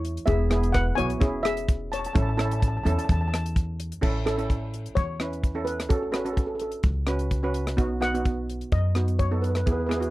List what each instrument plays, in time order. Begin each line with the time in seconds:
Already playing: upright bass E2, steel pan E4 C#5
0.05 closed hi-hat
0.17 closed hi-hat
0.26 upright bass E1, steel pan B3 E4 G#4 E5, kick, closed hi-hat
0.50 steel pan B3 E4 G#4, cross-stick, closed hi-hat
0.63 closed hi-hat
0.72 steel pan B4 F#5, kick, cross-stick, closed hi-hat
0.95 upright bass B1, steel pan B3 E4 F#4 C#5 G#5, closed hi-hat
1.10 closed hi-hat
1.20 upright bass E1, steel pan C#4 E4 G#4, kick, closed hi-hat
1.43 steel pan G#4 E5, cross-stick, closed hi-hat
1.57 closed hi-hat
1.68 kick, closed hi-hat
1.92 steel pan C#5 A5, closed hi-hat
1.99 steel pan A5
2.04 steel pan A5, closed hi-hat
2.13 upright bass A1, steel pan C#4 E4 A4 A5, kick, closed hi-hat
2.22 steel pan A5
2.29 steel pan A5
2.37 steel pan C#4 E4 A4 A5, cross-stick, closed hi-hat
2.45 steel pan A5
2.51 steel pan A5, closed hi-hat
2.60 steel pan A5, kick, closed hi-hat
2.68 steel pan A5
2.77 steel pan A5
2.83 upright bass E2, steel pan C#4 E4 A4 A5, closed hi-hat
2.92 steel pan A5
2.98 steel pan A5, closed hi-hat
3.05 steel pan A5
3.09 upright bass E2, steel pan A5, kick, closed hi-hat
3.21 steel pan A5
3.28 steel pan A5
3.34 steel pan A5, cross-stick, closed hi-hat
3.46 closed hi-hat
3.56 kick, closed hi-hat
3.80 closed hi-hat
3.92 closed hi-hat
4.01 upright bass A1, steel pan C#4 E4 A4, kick, crash
4.25 steel pan C#4 E4 A4, cross-stick, closed hi-hat
4.38 steel pan C#4 E4 A4, closed hi-hat
4.50 kick, closed hi-hat
4.74 closed hi-hat
4.86 closed hi-hat
4.95 upright bass E2, steel pan C#5, kick, closed hi-hat
5.20 steel pan C#4 E4 B4, cross-stick, closed hi-hat
5.33 closed hi-hat
5.44 kick, closed hi-hat
5.55 steel pan C#4 E4 A4
5.65 steel pan B4, closed hi-hat
5.80 cross-stick, closed hi-hat
5.89 upright bass A1, steel pan C#4 F#4 A4, kick, closed hi-hat
5.96 steel pan A4
6.02 steel pan A4
6.12 steel pan C#4 F#4 A4 B4, cross-stick, closed hi-hat
6.19 steel pan A4
6.25 steel pan C#4 F#4 A4, closed hi-hat
6.33 steel pan A4
6.37 steel pan A4, kick, closed hi-hat
6.47 steel pan A4
6.55 steel pan A4
6.59 steel pan A4, closed hi-hat
6.72 closed hi-hat
6.83 upright bass C#2, kick, closed hi-hat
7.07 steel pan C#4 F#4 B4, cross-stick, closed hi-hat
7.19 closed hi-hat
7.31 kick, closed hi-hat
7.43 steel pan C#4 F#4 B4
7.54 closed hi-hat
7.67 cross-stick, closed hi-hat
7.77 upright bass B1, steel pan B3 D#4 F#4, kick, closed hi-hat
8.00 steel pan B3 D#4 F#4 F#5, cross-stick, closed hi-hat
8.14 steel pan B3 D#4 F#4, closed hi-hat
8.25 kick, closed hi-hat
8.50 closed hi-hat
8.61 closed hi-hat
8.72 upright bass F#2, steel pan D#5, kick, closed hi-hat
8.95 steel pan B3 D#4 F#4, cross-stick, closed hi-hat
9.08 closed hi-hat
9.19 steel pan C#5, kick, closed hi-hat
9.31 steel pan B3 D#4 A4
9.42 steel pan B4, closed hi-hat
9.50 steel pan B4
9.55 steel pan B4, cross-stick, closed hi-hat
9.66 upright bass E2, steel pan B3 E4 G#4 B4, kick, closed hi-hat
9.73 steel pan B4
9.80 steel pan B4
9.86 steel pan B3 E4 G#4 B4
9.91 cross-stick, closed hi-hat
9.97 steel pan B3 E4 F#4 B4
10.02 closed hi-hat